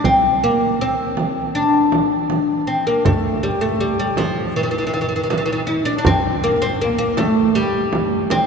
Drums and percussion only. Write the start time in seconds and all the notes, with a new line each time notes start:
0.04 frame drum
1.17 frame drum
1.92 frame drum
2.30 frame drum
3.05 frame drum, tombak dum
3.44 tombak ka
4.17 tombak tek, frame drum
4.93 tombak tek
5.30 tombak tek, frame drum
5.88 tombak ka
6.05 frame drum, tombak dum
6.44 tombak ka
7.17 tombak tek, frame drum
7.93 tombak tek, frame drum
8.30 tombak tek, frame drum